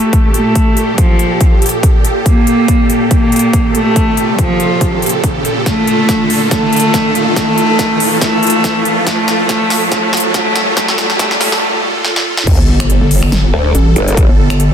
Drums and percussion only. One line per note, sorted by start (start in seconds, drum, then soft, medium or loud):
0.13 kick medium
0.13 closed hi-hat medium
0.34 closed hi-hat medium
0.55 kick medium
0.55 closed hi-hat medium
0.77 closed hi-hat medium
0.98 kick loud
0.98 closed hi-hat medium
1.19 closed hi-hat medium
1.41 kick loud
1.41 closed hi-hat medium
1.62 closed hi-hat medium
1.66 closed hi-hat medium
1.69 closed hi-hat medium
1.83 kick medium
1.83 closed hi-hat medium
2.05 closed hi-hat medium
2.26 kick medium
2.26 closed hi-hat medium
2.47 closed hi-hat medium
2.68 kick medium
2.68 closed hi-hat medium
2.90 closed hi-hat medium
3.11 kick loud
3.11 closed hi-hat medium
3.32 closed hi-hat soft
3.36 closed hi-hat medium
3.39 closed hi-hat medium
3.53 kick medium
3.53 closed hi-hat medium
3.75 closed hi-hat medium
3.96 kick medium
3.96 closed hi-hat medium
4.17 closed hi-hat medium
4.39 kick medium
4.39 closed hi-hat medium
4.60 closed hi-hat soft
4.81 kick loud
4.81 closed hi-hat medium
5.02 closed hi-hat soft
5.06 closed hi-hat medium
5.09 closed hi-hat medium
5.24 kick loud
5.24 closed hi-hat medium
5.45 closed hi-hat medium
5.66 kick medium
5.66 snare soft
5.66 closed hi-hat medium
5.87 closed hi-hat medium
6.09 kick loud
6.09 snare medium
6.09 closed hi-hat medium
6.30 open hi-hat medium
6.51 kick loud
6.51 snare medium
6.51 closed hi-hat medium
6.73 closed hi-hat soft
6.76 closed hi-hat medium
6.80 closed hi-hat medium
6.94 kick medium
6.94 snare medium
6.94 closed hi-hat medium
7.15 closed hi-hat medium
7.36 kick medium
7.36 snare medium
7.36 closed hi-hat medium
7.58 closed hi-hat medium
7.79 kick loud
7.79 snare medium
7.79 closed hi-hat medium
8.00 open hi-hat medium
8.21 kick medium
8.21 snare medium
8.21 closed hi-hat medium
8.43 closed hi-hat soft
8.47 closed hi-hat medium
8.50 closed hi-hat medium
8.64 kick loud
8.64 snare medium
8.64 closed hi-hat medium
8.85 closed hi-hat medium
9.07 kick medium
9.07 snare medium
9.07 closed hi-hat medium
9.28 snare medium
9.28 closed hi-hat medium
9.49 kick loud
9.49 snare medium
9.49 closed hi-hat medium
9.70 snare medium
9.70 open hi-hat loud
9.92 kick loud
9.92 snare medium
9.92 closed hi-hat medium
10.13 snare medium
10.13 closed hi-hat soft
10.17 closed hi-hat medium
10.20 closed hi-hat medium
10.34 kick loud
10.34 snare medium
10.34 closed hi-hat medium
10.56 snare loud
10.56 closed hi-hat medium
10.77 kick medium
10.77 snare medium
10.77 closed hi-hat medium
10.88 snare medium
10.98 snare loud
10.98 closed hi-hat medium
11.10 snare medium
11.19 kick loud
11.19 snare loud
11.19 closed hi-hat medium
11.31 snare medium
11.41 snare loud
11.41 open hi-hat loud
11.52 snare medium
12.05 snare medium
12.16 snare medium
12.37 snare medium
12.47 kick loud
12.47 closed hi-hat medium
12.47 crash loud
12.80 finger snap medium
12.80 closed hi-hat medium
12.90 closed hi-hat medium
13.11 open hi-hat medium
13.23 finger snap medium
13.32 snare loud
13.32 closed hi-hat medium
13.75 closed hi-hat medium
13.96 closed hi-hat medium
14.08 closed hi-hat medium
14.17 kick loud
14.17 closed hi-hat medium
14.50 finger snap medium
14.50 closed hi-hat medium
14.60 closed hi-hat medium